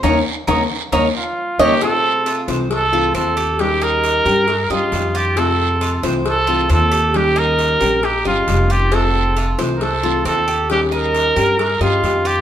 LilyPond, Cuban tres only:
\new Staff \with { instrumentName = "Cuban tres" } { \time 4/4 \key f \major \tempo 4 = 135 <bes' des'' ees''>8 r8 <bes' des'' ees''>8 r8 <bes' des'' ees''>8 r4 <bes' des'' ees''>8 | c'4 f'8 c''4 f'8 c'8 g'8~ | g'8 ees''4 bes'4 ees''4 f'8 | c'4 f'8 c''4 f'8 c'8 g'8~ |
g'8 ees''4 bes'4 ees''4 f'8 | c'4 f'8 c''4 f'8 c'8 g'8~ | g'8 ees''4 bes'4 ees''4 f'8 | }